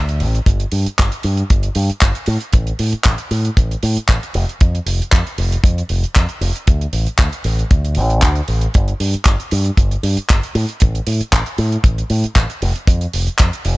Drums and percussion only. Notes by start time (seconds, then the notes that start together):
0.09 closed hi-hat
0.20 open hi-hat
0.35 closed hi-hat
0.46 kick, closed hi-hat
0.60 closed hi-hat
0.72 open hi-hat
0.86 closed hi-hat
0.98 kick, clap, closed hi-hat
1.12 closed hi-hat
1.23 open hi-hat
1.37 closed hi-hat
1.50 kick, closed hi-hat
1.63 closed hi-hat
1.75 open hi-hat
1.89 closed hi-hat
2.01 kick, clap, closed hi-hat
2.15 closed hi-hat
2.26 open hi-hat
2.40 closed hi-hat
2.53 kick, closed hi-hat
2.67 closed hi-hat
2.79 open hi-hat
2.92 closed hi-hat
3.05 kick, clap, closed hi-hat
3.18 closed hi-hat
3.31 open hi-hat
3.45 closed hi-hat
3.57 kick, closed hi-hat
3.71 closed hi-hat
3.83 open hi-hat
3.97 closed hi-hat
4.09 kick, clap, closed hi-hat
4.23 closed hi-hat
4.34 open hi-hat
4.49 closed hi-hat
4.61 kick, closed hi-hat
4.75 closed hi-hat
4.87 open hi-hat
5.02 closed hi-hat
5.12 kick, clap, closed hi-hat
5.27 closed hi-hat
5.38 open hi-hat
5.52 closed hi-hat
5.64 kick, closed hi-hat
5.78 closed hi-hat
5.89 open hi-hat
6.03 closed hi-hat
6.16 kick, clap, closed hi-hat
6.29 closed hi-hat
6.42 open hi-hat
6.56 closed hi-hat
6.67 kick, closed hi-hat
6.81 closed hi-hat
6.93 open hi-hat
7.07 closed hi-hat
7.18 kick, clap, closed hi-hat
7.33 closed hi-hat
7.44 open hi-hat
7.59 closed hi-hat
7.71 kick, closed hi-hat
7.85 closed hi-hat
7.95 open hi-hat
8.10 closed hi-hat
8.22 kick, clap, closed hi-hat
8.36 closed hi-hat
8.48 open hi-hat
8.61 closed hi-hat
8.74 kick, closed hi-hat
8.88 closed hi-hat
9.00 open hi-hat
9.14 closed hi-hat
9.25 kick, clap, closed hi-hat
9.40 closed hi-hat
9.51 open hi-hat
9.64 closed hi-hat
9.77 kick, closed hi-hat
9.91 closed hi-hat
10.03 open hi-hat
10.17 closed hi-hat
10.29 kick, clap, closed hi-hat
10.43 closed hi-hat
10.55 open hi-hat
10.68 closed hi-hat
10.80 kick, closed hi-hat
10.95 closed hi-hat
11.07 open hi-hat
11.21 closed hi-hat
11.32 kick, clap, closed hi-hat
11.46 closed hi-hat
11.58 open hi-hat
11.72 closed hi-hat
11.84 kick, closed hi-hat
11.98 closed hi-hat
12.10 open hi-hat
12.24 closed hi-hat
12.35 kick, clap, closed hi-hat
12.50 closed hi-hat
12.62 open hi-hat
12.76 closed hi-hat
12.87 kick, closed hi-hat
13.01 closed hi-hat
13.13 open hi-hat
13.27 closed hi-hat
13.39 kick, clap, closed hi-hat
13.53 closed hi-hat
13.65 open hi-hat